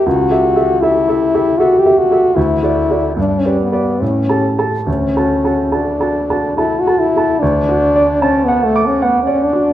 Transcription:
X:1
M:3/4
L:1/16
Q:1/4=75
K:D
V:1 name="Grand piano"
(3C,,2 [GAe]2 [GAe]2 (3[GAe]2 [GAe]2 [GAe]2 (3[GAe]2 [GAe]2 [GAe]2 | (3D,,2 [FAd]2 [FAd]2 (3G,,2 [GBd]2 [GBd]2 (3A,,2 [GAa]2 [GAa]2 | (3D,,2 [FAa]2 [FAa]2 (3[FAa]2 [FAa]2 [FAa]2 (3[FAa]2 [FAa]2 [FAa]2 | (3D,,2 F2 d2 (3a2 f2 d'2 (3f2 d2 F2 |]
V:2 name="French horn"
F4 E4 F G F2 | E4 D C B,2 C3 z | C4 D4 E F E2 | D4 C B, A, C B, C D2 |]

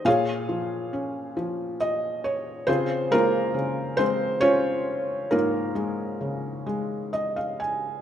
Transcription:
X:1
M:6/8
L:1/16
Q:3/8=46
K:Db
V:1 name="Felt piano"
[FAdf]8 e2 d2 | [CFAc]2 [B,FB]4 [Cc]2 [DFd]4 | [B,FB]8 e f a2 |]
V:2 name="Felt piano" clef=bass
B,,2 F,2 D2 F,6 | D,2 A,2 D,2 A,6 | A,,2 A,2 D,2 A,6 |]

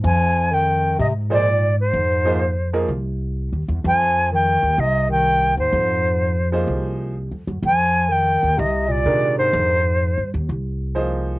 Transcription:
X:1
M:4/4
L:1/8
Q:"Swing" 1/4=126
K:Fdor
V:1 name="Flute"
a2 g2 e d2 c- | c3 z4 z | a2 g2 e g2 c- | c3 z4 z |
a2 g2 e d2 c- | c3 z4 z |]
V:2 name="Grand piano"
z4 z [F,B,EAc] z2 | z [F,B,EAc] z [F,B,EAB] z4 | z8 | z3 [F,B,EAc]3 z2 |
z6 [E,A,DGB]2- | [E,A,DGB] z4 z [F,B,EAc]2 |]
V:3 name="Bass clarinet" clef=bass
F,2 E,2 C, B,,2 A,,- | A,,3 z4 z | F,2 E,2 C, E,2 A,,- | A,,3 z4 z |
F,2 E,2 C, B,,2 A,,- | A,,3 z4 z |]
V:4 name="Upright bass" clef=bass
F,,4 A,,4 | F,,4 C,,2- (3C,, E,, =E,, | F,,3 E,, C,,3 E,, | F,,4 C,,2- (3C,, F,, _G,, |
F,,3 E,, C,,2 C,2 | F,,2- (3F,, G,, E,, C,,4 |]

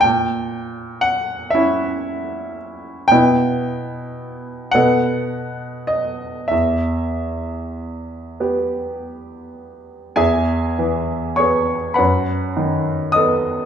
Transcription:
X:1
M:6/8
L:1/8
Q:3/8=34
K:Em
V:1 name="Grand piano"
g2 f e2 z | g3 f2 ^d | e3 z3 | [K:E] [Geg]2 [cc'] [Bfb]2 [dd'] |]
V:2 name="Grand piano"
^A,,3 [^CE]3 | [B,,B,E]3 [B,,B,A]3 | E,,3 [B,G]3 | [K:E] E,, E, [B,G] F,, D, [B,A] |]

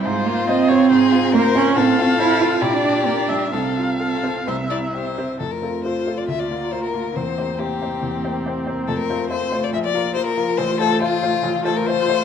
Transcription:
X:1
M:4/4
L:1/16
Q:1/4=140
K:Fm
V:1 name="Viola"
c4 e2 d2 c4 c4 | [K:F] f8 d4 d2 e2 | f8 e6 z2 | F16 |
C16- | C8 F8- | F16 |]
V:2 name="Violin"
F8 A4 B4 | [K:F] A8 G8 | A4 A4 c2 d2 c4 | A B3 c3 d e d3 c B3 |
c4 G8- G2 z2 | A B3 c3 d e d3 c B3 | c2 A2 F6 A B c4 |]
V:3 name="Grand piano"
A,,2 F2 c2 C2 A,,2 F2 c2 C2 | [K:F] A,,2 F2 c2 C2 B,,2 D2 B2 G,2 | C,,2 F2 A2 C2 C,,2 E2 G2 C2 | F,,2 [CFA]2 [CFA]2 [CFA]2 D,,2 [B,FB]2 [B,FB]2 [B,FB]2 |
E,,2 [B,Gc]2 [B,Gc]2 [B,Gc]2 E,,2 [B,Gc]2 [B,Gc]2 [B,Gc]2 | F,,2 [A,Fc]2 [A,Fc]2 [A,Fc]2 B,,,2 [F,FB]2 [F,FB]2 [F,FB]2 | A,,,2 [A,Fc]2 [A,Fc]2 [A,Fc]2 A,,,2 [A,Fc]2 [A,Fc]2 [A,Fc]2 |]
V:4 name="Cello"
A,2 B,2 C8 B,2 D2 | [K:F] C4 E2 F2 E D3 B, D3 | C12- C2 z2 | A,8 B,8- |
B,16 | A,8 B,8 | A,16 |]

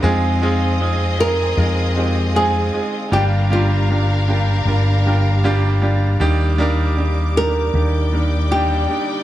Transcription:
X:1
M:4/4
L:1/8
Q:1/4=78
K:Fdor
V:1 name="String section"
[A,fe']8 | [Gfb]8 | [Gdd']8 |]
V:2 name="Violin section"
[CAe]8 | [DBf]8 | z4 [Edg]4 |]
V:3 name="Nylon-string guitar"
z3 B3 A2 | G F4 z3 | z3 B3 G2 |]
V:4 name="Grand piano"
[A,CEFA] [A,CEFA] [A,CEFA] [A,CEFA] [A,CEFB] [A,CEFG] [A,CEFA] [A,CEFA] | [G,B,DFG] [G,B,DFG] [G,B,DFG] [G,B,DFG] [G,B,DFB] [G,B,DFBg] [G,B,DFGf] [G,B,DFGd] | [G,B,DEG] [G,B,DEB] [G,B,DEG] [G,B,DEG] [G,B,DEG] [G,B,DEB] [G,B,DEG] [G,B,DEG] |]
V:5 name="Grand piano" clef=bass
z8 | G,,3 z4 z | E,3 z4 z |]
V:6 name="Fretless electric bass" clef=bass
F,,4 F,,3 z | G,,,4 G,,,4 | E,,4 E,,3 z |]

